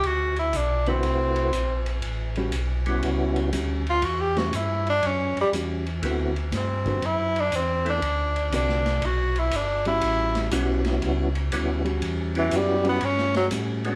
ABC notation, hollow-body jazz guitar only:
X:1
M:4/4
L:1/8
Q:"Swing" 1/4=120
K:Amix
V:1 name="Hollow-body jazz guitar"
z3 [D,=CFB] z4 | z [G,CF] z4 [G,CF] z | z [G,CF] z4 [G,CF] z | [D,=CFB] z2 [D,CFB] z4 |
z2 [D,=CFB] z4 [G,^CF]- | [G,CF]2 [G,CF] z4 [G,CF]- | [G,CF]2 z [G,CF] z2 [G,CF] z |]